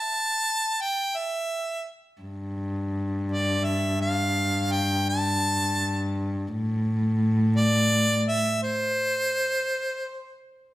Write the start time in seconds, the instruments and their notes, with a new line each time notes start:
Already playing: harmonica A5
0.81 harmonica G5
1.18 harmonica E5
2.22 cello G2
3.32 harmonica D5
3.64 harmonica E5
4.02 harmonica F5
4.72 harmonica G5
5.09 harmonica A5
6.48 cello A2
7.56 harmonica D5
8.28 harmonica E5
8.63 harmonica C5